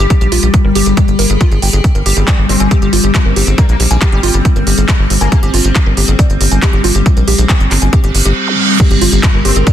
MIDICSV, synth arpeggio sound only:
0, 0, Header, 1, 2, 480
1, 0, Start_track
1, 0, Tempo, 434783
1, 114, Time_signature, 4, 2, 24, 8
1, 10741, End_track
2, 0, Start_track
2, 0, Title_t, "Synth arpeggio sound"
2, 0, Program_c, 0, 84
2, 113, Note_on_c, 0, 67, 99
2, 193, Note_off_c, 0, 67, 0
2, 233, Note_on_c, 0, 67, 97
2, 313, Note_off_c, 0, 67, 0
2, 353, Note_on_c, 0, 65, 101
2, 467, Note_off_c, 0, 65, 0
2, 473, Note_on_c, 0, 67, 81
2, 553, Note_off_c, 0, 67, 0
2, 714, Note_on_c, 0, 70, 83
2, 761, Note_off_c, 0, 70, 0
2, 833, Note_on_c, 0, 67, 99
2, 947, Note_off_c, 0, 67, 0
2, 953, Note_on_c, 0, 68, 78
2, 1033, Note_off_c, 0, 68, 0
2, 1073, Note_on_c, 0, 74, 86
2, 1187, Note_off_c, 0, 74, 0
2, 1313, Note_on_c, 0, 70, 98
2, 1427, Note_off_c, 0, 70, 0
2, 1433, Note_on_c, 0, 68, 73
2, 1513, Note_off_c, 0, 68, 0
2, 1553, Note_on_c, 0, 65, 105
2, 1601, Note_off_c, 0, 65, 0
2, 1673, Note_on_c, 0, 68, 72
2, 1721, Note_off_c, 0, 68, 0
2, 1793, Note_on_c, 0, 79, 103
2, 1873, Note_off_c, 0, 79, 0
2, 1914, Note_on_c, 0, 68, 83
2, 1993, Note_off_c, 0, 68, 0
2, 2153, Note_on_c, 0, 70, 77
2, 2201, Note_off_c, 0, 70, 0
2, 2274, Note_on_c, 0, 67, 108
2, 2388, Note_off_c, 0, 67, 0
2, 2394, Note_on_c, 0, 68, 79
2, 2473, Note_off_c, 0, 68, 0
2, 2513, Note_on_c, 0, 74, 83
2, 2627, Note_off_c, 0, 74, 0
2, 2754, Note_on_c, 0, 67, 70
2, 2801, Note_off_c, 0, 67, 0
2, 2873, Note_on_c, 0, 80, 108
2, 2921, Note_off_c, 0, 80, 0
2, 2993, Note_on_c, 0, 67, 102
2, 3073, Note_off_c, 0, 67, 0
2, 3113, Note_on_c, 0, 67, 97
2, 3193, Note_off_c, 0, 67, 0
2, 3234, Note_on_c, 0, 65, 92
2, 3347, Note_off_c, 0, 65, 0
2, 3353, Note_on_c, 0, 67, 76
2, 3433, Note_off_c, 0, 67, 0
2, 3593, Note_on_c, 0, 70, 74
2, 3641, Note_off_c, 0, 70, 0
2, 3713, Note_on_c, 0, 67, 100
2, 3827, Note_off_c, 0, 67, 0
2, 3833, Note_on_c, 0, 68, 78
2, 3913, Note_off_c, 0, 68, 0
2, 3953, Note_on_c, 0, 74, 79
2, 4067, Note_off_c, 0, 74, 0
2, 4194, Note_on_c, 0, 67, 78
2, 4241, Note_off_c, 0, 67, 0
2, 4313, Note_on_c, 0, 80, 102
2, 4361, Note_off_c, 0, 80, 0
2, 4434, Note_on_c, 0, 67, 104
2, 4513, Note_off_c, 0, 67, 0
2, 4554, Note_on_c, 0, 67, 110
2, 4633, Note_off_c, 0, 67, 0
2, 4673, Note_on_c, 0, 65, 99
2, 4787, Note_off_c, 0, 65, 0
2, 4793, Note_on_c, 0, 67, 76
2, 4873, Note_off_c, 0, 67, 0
2, 5033, Note_on_c, 0, 70, 77
2, 5081, Note_off_c, 0, 70, 0
2, 5154, Note_on_c, 0, 67, 92
2, 5268, Note_off_c, 0, 67, 0
2, 5273, Note_on_c, 0, 68, 76
2, 5353, Note_off_c, 0, 68, 0
2, 5393, Note_on_c, 0, 74, 82
2, 5507, Note_off_c, 0, 74, 0
2, 5633, Note_on_c, 0, 67, 74
2, 5681, Note_off_c, 0, 67, 0
2, 5753, Note_on_c, 0, 80, 108
2, 5801, Note_off_c, 0, 80, 0
2, 5873, Note_on_c, 0, 67, 95
2, 5953, Note_off_c, 0, 67, 0
2, 5993, Note_on_c, 0, 67, 108
2, 6073, Note_off_c, 0, 67, 0
2, 6113, Note_on_c, 0, 65, 102
2, 6227, Note_off_c, 0, 65, 0
2, 6233, Note_on_c, 0, 67, 77
2, 6313, Note_off_c, 0, 67, 0
2, 6473, Note_on_c, 0, 70, 84
2, 6521, Note_off_c, 0, 70, 0
2, 6593, Note_on_c, 0, 67, 102
2, 6707, Note_off_c, 0, 67, 0
2, 6713, Note_on_c, 0, 68, 79
2, 6793, Note_off_c, 0, 68, 0
2, 6833, Note_on_c, 0, 74, 81
2, 6947, Note_off_c, 0, 74, 0
2, 7073, Note_on_c, 0, 67, 72
2, 7121, Note_off_c, 0, 67, 0
2, 7193, Note_on_c, 0, 80, 101
2, 7241, Note_off_c, 0, 80, 0
2, 7313, Note_on_c, 0, 67, 108
2, 7393, Note_off_c, 0, 67, 0
2, 7433, Note_on_c, 0, 67, 98
2, 7513, Note_off_c, 0, 67, 0
2, 7553, Note_on_c, 0, 65, 101
2, 7667, Note_off_c, 0, 65, 0
2, 7673, Note_on_c, 0, 67, 83
2, 7753, Note_off_c, 0, 67, 0
2, 7913, Note_on_c, 0, 70, 81
2, 7961, Note_off_c, 0, 70, 0
2, 8033, Note_on_c, 0, 67, 106
2, 8147, Note_off_c, 0, 67, 0
2, 8153, Note_on_c, 0, 68, 73
2, 8233, Note_off_c, 0, 68, 0
2, 8273, Note_on_c, 0, 74, 92
2, 8387, Note_off_c, 0, 74, 0
2, 8513, Note_on_c, 0, 67, 74
2, 8561, Note_off_c, 0, 67, 0
2, 8633, Note_on_c, 0, 80, 105
2, 8681, Note_off_c, 0, 80, 0
2, 8753, Note_on_c, 0, 67, 99
2, 8833, Note_off_c, 0, 67, 0
2, 8873, Note_on_c, 0, 67, 103
2, 8953, Note_off_c, 0, 67, 0
2, 8993, Note_on_c, 0, 67, 75
2, 9100, Note_off_c, 0, 67, 0
2, 9113, Note_on_c, 0, 67, 105
2, 9161, Note_off_c, 0, 67, 0
2, 9713, Note_on_c, 0, 67, 100
2, 9793, Note_off_c, 0, 67, 0
2, 9833, Note_on_c, 0, 67, 103
2, 9913, Note_off_c, 0, 67, 0
2, 9953, Note_on_c, 0, 65, 105
2, 10067, Note_off_c, 0, 65, 0
2, 10073, Note_on_c, 0, 67, 79
2, 10153, Note_off_c, 0, 67, 0
2, 10313, Note_on_c, 0, 70, 76
2, 10361, Note_off_c, 0, 70, 0
2, 10433, Note_on_c, 0, 67, 103
2, 10547, Note_off_c, 0, 67, 0
2, 10553, Note_on_c, 0, 68, 81
2, 10633, Note_off_c, 0, 68, 0
2, 10673, Note_on_c, 0, 74, 81
2, 10741, Note_off_c, 0, 74, 0
2, 10741, End_track
0, 0, End_of_file